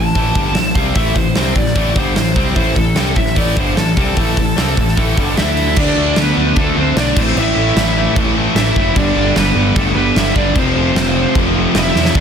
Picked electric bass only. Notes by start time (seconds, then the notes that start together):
Already playing: A1
0.15 A1
0.35 G1
0.55 A1
0.75 C2
0.95 A1
1.15 A1
1.36 C2
1.55 A1
1.76 A1
1.96 G1
2.16 A1
2.36 C2
2.56 A1
2.76 A1
2.96 C2
3.16 A1
3.36 A1
3.57 G1
3.77 A1
3.97 C2
4.16 A1
4.37 A1
4.57 C2
4.77 A1
4.97 A1
5.17 G1
5.37 D2
5.77 D2
5.97 D2
6.17 D2
6.37 D2
6.56 D2
6.76 D2
6.96 B1
7.16 A1
7.36 A1
7.56 A1
7.76 A1
8.16 A1
8.55 A1
8.76 F#1
8.96 G1
9.16 G1
9.36 G1
9.55 G1
9.76 G1
9.96 G1
10.16 G1
10.36 G1
10.56 F1
10.75 F1
10.95 F1
11.36 F1
11.75 F1
11.95 E2
12.15 D2